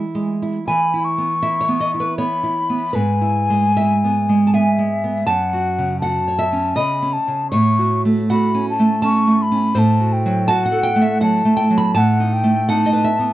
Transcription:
Already playing: E3 E4
0.15 G#3
0.42 E4
0.67 E3 G#5 B5
0.94 E4
1.05 C#6
1.18 B3
1.42 E4 E5
1.61 C#5
1.68 B3
1.80 D#5
1.94 E4
2.00 B4
2.18 B3 C#5 B5
2.43 E4
2.70 B3
2.93 G#2 B4 G#5
3.21 E4
3.50 G#3
3.77 E4 E5
4.04 B3
4.29 G#3
4.47 A5
4.54 B3 E5 G#5
4.78 G#3
5.04 B3
5.26 F#2 F#5 A5
5.53 F#4
5.78 C#3
6.01 F#4 F#5 A5
6.28 C#5
6.39 E5
6.53 C#4
6.76 C#3 D#5 B5
7.02 C#4
7.13 A5
7.28 C#3
7.51 A2 C#5 C#6
7.79 F#4
8.05 A3
8.30 F#4 F#5 B5
8.54 C#4
8.70 A5
8.79 A3
9.02 C#4 A5 C#6
9.27 A3
9.42 B5
9.52 C#4
9.75 A2 C5 A5
10.00 F#4
10.13 G5
10.26 F#3
10.48 F#4 F#5 A5
10.65 F#5
10.72 A4
10.83 G5
10.96 A3
11.01 E5
11.21 F#3 F#5 A5
11.45 A3
11.57 G5
11.70 F#3
11.78 B5
11.94 A2 F#5 A5
12.20 D#4
12.33 G5
12.44 A3
12.69 D#4 F#5 A5
12.86 D#5
12.93 B4
13.04 E5
13.19 B3

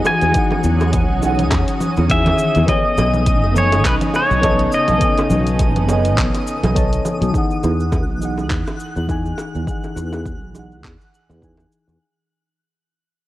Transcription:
Already playing: E3 F#3 B3 D#4 F#4 G#4 F#5 G#5 D#6
0.05 G#5, high bongo, low conga, cabasa
0.22 E2, closed hi-hat, cabasa
0.32 E3 C#4 D#4, kick, closed hi-hat, cabasa
0.36 G#4 F#5
0.51 high bongo, low conga
0.64 E2, cabasa
0.80 high bongo, cabasa
0.93 kick, closed hi-hat, low conga, cabasa
1.10 B1
1.19 E3 D#4, high bongo, cabasa
1.24 G#4 F#5
1.39 closed hi-hat, low conga, cabasa
1.51 E2, kick, clap, closed hi-hat, high bongo, cabasa
1.68 closed hi-hat, cabasa
1.81 low conga, cabasa
1.97 E2, high bongo, cabasa
2.09 D#3 E3 G#4 E5 G#5, kick, closed hi-hat, cabasa
2.26 closed hi-hat, high bongo, low conga
2.39 cabasa
2.55 E2, closed hi-hat, cabasa
2.66 C#3 A3 B3 D#4 A4 C#5 D#5, kick, closed hi-hat, high bongo, low conga, cabasa
2.70 D#5 G#5
2.97 B1, high bongo, cabasa
3.13 low conga, cabasa
3.26 kick, closed hi-hat, cabasa
3.43 F#1, high bongo
3.53 B3 A4 C#5, low conga, cabasa
3.57 C#5 D#5 G#5
3.72 closed hi-hat, high bongo, cabasa
3.84 B1 B4, kick, clap, closed hi-hat, cabasa
4.01 closed hi-hat, low conga, cabasa
4.14 C#5, high bongo, cabasa
4.31 B1, cabasa
4.41 B3 A4 C#5 D#5 A5, kick, closed hi-hat, high bongo, low conga, cabasa
4.59 closed hi-hat
4.72 D#5, cabasa
4.88 B1, closed hi-hat, high bongo, low conga, cabasa
4.98 B3 A4 C#5, kick, closed hi-hat, cabasa
5.02 B3 D#5 G#5
5.17 closed hi-hat, high bongo, cabasa
5.30 B1, low conga, cabasa
5.46 closed hi-hat, cabasa
5.59 kick, closed hi-hat, high bongo, cabasa
5.76 F#1, closed hi-hat, low conga
5.86 B3 A4 C#5, high bongo, cabasa
5.91 D#5 G#5
6.05 closed hi-hat, cabasa
6.17 B1, kick, clap, closed hi-hat, low conga, cabasa
6.34 closed hi-hat, high bongo, cabasa
6.47 cabasa
6.63 B1, closed hi-hat, high bongo, low conga, cabasa
6.74 B3 A4 C#5 D#5 A5, kick, closed hi-hat, cabasa
6.93 closed hi-hat, cabasa
7.05 high bongo, low conga, cabasa
7.21 B1, closed hi-hat, cabasa
7.31 E3 D#4 F#6, kick, cabasa
7.36 G#4 F#5
7.51 cabasa
7.63 E2, high bongo, cabasa
7.80 cabasa
7.92 kick, high bongo, cabasa
8.09 B1
8.19 E3 D#4, cabasa
8.23 G#4 F#5
8.38 high bongo, cabasa
8.50 E2, kick, clap, cabasa
8.67 high bongo, cabasa
8.80 cabasa
8.96 E2, cabasa
9.08 E3 D#4 G#4 G#5, kick, high bongo, cabasa
9.26 cabasa
9.38 high bongo, cabasa
9.55 E2, cabasa
9.64 E3 D#4, kick, cabasa
9.68 G#4 F#5
9.84 high bongo, cabasa
9.96 E2, cabasa
10.13 high bongo, cabasa
10.26 kick, cabasa
10.42 B1
10.52 E3 D#4, high bongo, cabasa
10.56 G#4 F#5
10.71 cabasa
10.84 E2, kick, clap, high bongo, cabasa
11.01 cabasa
11.14 cabasa
11.29 E2, high bongo, cabasa
11.41 E3 D#4 G#4 G#5, kick, cabasa
11.57 high bongo, cabasa
11.72 cabasa
11.88 E2, cabasa

